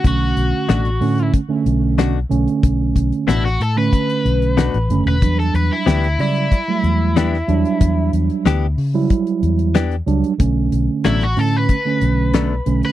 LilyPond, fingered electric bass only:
\new Staff \with { instrumentName = "Fingered electric bass" } { \clef bass \time 4/4 \key b \minor \tempo 4 = 93 b,,8 b,,16 r16 a,,8 a,8 r8 b,,4 b,,16 r16 | b,,8 b,,16 r16 a,,8 a,8 r8 b,,8. a,,16 fis,,16 e,,16 | e,8 e,16 r16 d,8 cis8 r8 e,4 e,16 r16 | e,8 e,16 r16 d,8 cis8 r8 e,4 cis,16 r16 |
b,,8 b,,16 r16 a,,8 a,8 r8 b,,4 b,,16 r16 | }